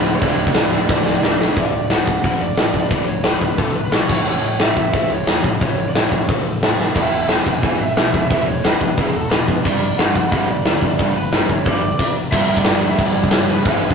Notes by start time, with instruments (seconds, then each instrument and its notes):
Already playing: picked electric bass D1, overdriven electric guitar D2 A2 D3, distorted electric guitar D2 A2 D3, lead electric guitar B4
0.16 lead electric guitar C#5
0.21 picked electric bass D1, distorted electric guitar D2 A2 D3, lead electric guitar D5, kick, crash
0.47 kick
0.55 picked electric bass D1, snare, crash
0.71 picked electric bass D1, distorted electric guitar D2 A2 D3
0.89 picked electric bass D1, kick, snare
1.05 picked electric bass D1, snare
1.23 picked electric bass D1, snare
1.40 picked electric bass B1, snare
1.56 picked electric bass D1, distorted electric guitar D2 A2 D3, lead electric guitar D5, kick, open hi-hat
1.73 picked electric bass D1, distorted electric guitar D2 A2
1.90 picked electric bass D1, distorted electric guitar D2 A2 D3, lead electric guitar F#5, snare, open hi-hat
2.07 picked electric bass D1, distorted electric guitar D2 A2, kick
2.24 picked electric bass D1, distorted electric guitar D2 A2 D3, lead electric guitar F#5, kick, open hi-hat
2.41 picked electric bass F#1, distorted electric guitar D2 A2, lead electric guitar D5
2.57 picked electric bass A1, distorted electric guitar D2 A2, snare, open hi-hat
2.74 picked electric bass D1, distorted electric guitar D2 A2, kick
2.89 picked electric bass D1, distorted electric guitar D2 A2 D3, lead electric guitar D5, kick, open hi-hat
3.06 picked electric bass D1, distorted electric guitar D2 A2, lead electric guitar C#5
3.23 picked electric bass D1, distorted electric guitar D2 A2 D3, lead electric guitar B4, snare, open hi-hat
3.41 picked electric bass D1, distorted electric guitar D2 A2, kick
3.58 picked electric bass D1, distorted electric guitar D2 A2 D3, lead electric guitar A4, kick, open hi-hat
3.74 picked electric bass D1, distorted electric guitar D2 A2, lead electric guitar B4
3.91 picked electric bass B1, distorted electric guitar D2 A2, lead electric guitar C#5, snare, open hi-hat
4.09 picked electric bass A1, distorted electric guitar A2 E3 A3, kick, crash
4.25 picked electric bass A1, distorted electric guitar A2 E3 A3, lead electric guitar C#5
4.42 picked electric bass A1, distorted electric guitar A2 E3
4.59 picked electric bass A1, distorted electric guitar A2 E3 A3, lead electric guitar E5, snare, open hi-hat
4.77 picked electric bass A1, distorted electric guitar A2 E3, kick
4.93 picked electric bass A1, distorted electric guitar A2 E3 A3, lead electric guitar E5, kick, open hi-hat
5.10 picked electric bass C#2, distorted electric guitar A2 E3, lead electric guitar C#5
5.27 picked electric bass E2, distorted electric guitar A2 E3, snare, open hi-hat
5.43 picked electric bass A1, distorted electric guitar A2 E3, kick
5.61 picked electric bass A1, distorted electric guitar A2 E3 A3, lead electric guitar C#5, kick, open hi-hat
5.77 picked electric bass A1, distorted electric guitar A2 E3
5.89 lead electric guitar D5
5.94 picked electric bass A1, distorted electric guitar A2 E3 A3, snare, open hi-hat
5.98 lead electric guitar C#5
6.12 picked electric bass A1, distorted electric guitar A2 E3, kick
6.28 picked electric bass A1, distorted electric guitar A2 E3 A3, kick, open hi-hat
6.44 picked electric bass A1, distorted electric guitar A2 E3
6.61 picked electric bass A1, distorted electric guitar A2 E3, snare, open hi-hat
6.79 picked electric bass A1, distorted electric guitar A2 E3, snare
6.95 picked electric bass E1, distorted electric guitar E2 B2 E3, lead electric guitar E5, kick, crash
7.12 picked electric bass E1, distorted electric guitar E2 B2
7.29 picked electric bass E1, distorted electric guitar E2 B2 E3, lead electric guitar G#5, snare, open hi-hat
7.46 picked electric bass E1, distorted electric guitar E2 B2, kick
7.63 picked electric bass E1, distorted electric guitar E2 B2 E3, lead electric guitar G#5, kick, open hi-hat
7.79 picked electric bass G#1, distorted electric guitar E2 B2, lead electric guitar E5
7.96 picked electric bass B1, distorted electric guitar E2 B2, snare, open hi-hat
8.13 picked electric bass E1, distorted electric guitar E2 B2, lead electric guitar E5, kick
8.30 picked electric bass E1, distorted electric guitar E2 B2 E3, kick, open hi-hat
8.46 picked electric bass E1, distorted electric guitar E2 B2, lead electric guitar C#5
8.63 picked electric bass E1, distorted electric guitar E2 B2 E3, lead electric guitar B4, snare, open hi-hat
8.81 picked electric bass E1, distorted electric guitar E2 B2, kick
8.97 picked electric bass E1, distorted electric guitar E2 B2 E3, lead electric guitar G#4, kick, open hi-hat
9.14 picked electric bass E1, distorted electric guitar E2 B2, lead electric guitar A4
9.30 picked electric bass E1, distorted electric guitar E2 B2, lead electric guitar B4, snare, open hi-hat
9.48 picked electric bass F#1, distorted electric guitar E2 B2, kick
9.63 picked electric bass G1, distorted electric guitar G2 D3 G3, lead electric guitar D5, kick, crash
9.80 picked electric bass G1, distorted electric guitar G2 D3
9.98 picked electric bass G1, distorted electric guitar G2 D3 G3, lead electric guitar F#5, snare, open hi-hat
10.15 picked electric bass G1, distorted electric guitar G2 D3, lead electric guitar F#5, kick
10.32 picked electric bass G1, distorted electric guitar G2 D3 G3, lead electric guitar F#5, kick, open hi-hat
10.47 picked electric bass B1, distorted electric guitar G2 D3, lead electric guitar D5
10.65 picked electric bass D2, distorted electric guitar G2 D3, snare, open hi-hat
10.82 picked electric bass G1, distorted electric guitar G2 D3, kick
10.99 picked electric bass G1, distorted electric guitar G2 D3 G3, lead electric guitar D5, kick, open hi-hat
11.15 picked electric bass G1, distorted electric guitar G2 D3, lead electric guitar B4
11.32 picked electric bass G1, distorted electric guitar G2 D3 G3, snare, open hi-hat
11.49 picked electric bass G1, distorted electric guitar G2 D3, lead electric guitar C#5, kick
11.66 picked electric bass G1, distorted electric guitar G2 D3 G3, lead electric guitar D5, kick, open hi-hat
11.81 picked electric bass G1, distorted electric guitar G2 D3
11.99 kick, crash
12.31 picked electric bass G1, distorted electric guitar G2 D3 G3, lead electric guitar E5, kick, crash
12.48 picked electric bass G1
12.57 lead electric guitar D5, kick
12.65 picked electric bass G1, snare, crash
12.81 distorted electric guitar G2 D3 G3
12.91 lead electric guitar E5
12.98 picked electric bass D2, kick, crash
13.07 lead electric guitar D5
13.15 picked electric bass G1
13.24 kick
13.31 picked electric bass G1, lead electric guitar C#5, snare, crash
13.50 lead electric guitar B4
13.64 picked electric bass G1, distorted electric guitar G2 D3 G3, kick, crash
13.90 kick